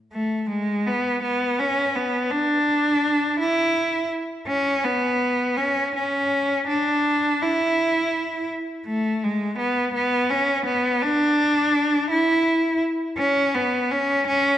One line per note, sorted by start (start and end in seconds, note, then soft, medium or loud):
0.12 0.46 A3 medium
0.49 0.88 G#3 medium
0.86 1.21 B3 medium
1.22 1.61 B3 medium
1.59 1.97 C#4 medium
1.96 2.32 B3 medium
2.31 3.39 D4 medium
3.39 4.08 E4 medium
4.47 4.85 C#4 medium
4.84 5.58 B3 medium
5.57 5.93 C#4 medium
5.95 6.63 C#4 medium
6.67 7.44 D4 medium
7.42 8.50 E4 medium
8.87 9.25 A3 medium
9.24 9.57 G#3 medium
9.58 9.91 B3 medium
9.94 10.31 B3 medium
10.30 10.65 C#4 medium
10.66 11.03 B3 medium
11.02 12.10 D4 medium
12.10 12.80 E4 medium
13.18 13.56 C#4 medium
13.54 13.92 B3 medium
13.90 14.26 C#4 medium
14.27 14.58 C#4 medium